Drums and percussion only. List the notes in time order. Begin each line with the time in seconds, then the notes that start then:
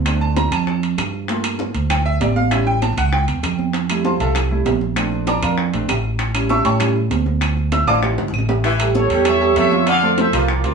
0.06 high bongo, high conga, high timbale, claves
0.21 high bongo, high conga
0.36 high bongo, high conga, high timbale
0.52 high bongo, high conga, high timbale, claves
0.67 high bongo, high conga
0.83 high conga, high timbale
0.98 high bongo, low bongo, high conga, high timbale, claves
1.13 high bongo
1.28 high bongo, high conga, high timbale
1.44 high bongo, high conga, high timbale, claves
1.59 high bongo, high conga
1.75 high bongo, high conga, high timbale
1.90 high bongo, high conga, low conga, high timbale, claves
2.06 high conga
2.21 high bongo, low bongo, high conga, high timbale, low timbale
2.36 high bongo, high conga
2.51 high bongo, high timbale, claves
2.67 high bongo, high conga
2.82 high bongo, high conga, high timbale
2.97 high bongo, high conga, high timbale, claves
3.13 high bongo, high conga
3.28 high conga, high timbale
3.43 high bongo, low bongo, high conga, high timbale, claves
3.58 high bongo, high conga
3.73 high bongo, high conga, high timbale
3.89 high bongo, high conga, high timbale, claves
4.04 high bongo, high conga
4.20 high bongo, high conga, high timbale
4.35 high bongo, high conga, low conga, high timbale, claves
4.51 high conga, low conga
4.66 high bongo, low bongo, high conga, high timbale, low timbale
4.81 high bongo, high conga
4.96 high bongo, high conga, high timbale, claves
5.12 high bongo, high conga
5.27 high bongo, high conga, high timbale
5.43 high bongo, high conga, high timbale, claves
5.58 high bongo, high conga
5.74 high conga, high timbale
5.88 high bongo, low bongo, high conga, high timbale, low timbale, claves
6.04 high bongo
6.19 high bongo, high conga, high timbale
6.34 high bongo, high conga, high timbale, claves
6.49 high bongo, high conga
6.65 high bongo, high timbale
6.80 high bongo, high conga, low conga, high timbale, claves
6.96 high conga
7.11 high bongo, low bongo, high conga, high timbale
7.26 high bongo, high conga
7.41 high bongo, high conga, high timbale, claves
7.57 high bongo, high conga
7.72 high bongo, high conga, high timbale
7.87 high bongo, high conga, high timbale, claves
8.03 high bongo, high conga, low timbale
8.18 high bongo, high conga, high timbale
8.28 high bongo
8.33 high conga, claves
8.38 low bongo
8.49 low bongo, low timbale
8.64 high bongo, high conga, high timbale
8.79 high bongo, high conga, high timbale, claves
8.95 high bongo, high conga
9.10 high bongo, high conga, high timbale
9.25 high bongo, high conga, low conga, high timbale, claves
9.41 high conga
9.56 high bongo, low bongo, high conga, high timbale, low timbale
9.71 high bongo, high conga
9.87 high bongo, high conga, high timbale, claves
10.02 high bongo, high conga
10.18 high bongo, high conga, high timbale
10.33 high bongo, high conga, high timbale, claves
10.48 high bongo, high conga
10.64 high conga, high timbale